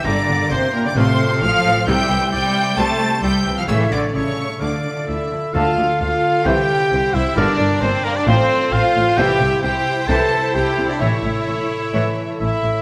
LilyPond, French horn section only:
\new Staff \with { instrumentName = "French horn section" } { \time 4/4 \key d \minor \tempo 4 = 132 << { d'4 e'4 f'4 f'4 | e'4 e'2 e'4 | e'4 e'4 f'4 e'4 | f'4 f'4 g'4. e'8 |
d'4 c'8 bes16 d'16 c'4 f'4 | g'4 g'4 a'4 g'8. d'16 | e'2. e'4 | } \\ { bes2 c'4 c'4 | c'4 c'2 c'4 | a4 a4 a4 r4 | r1 |
r1 | r1 | r1 | } >> }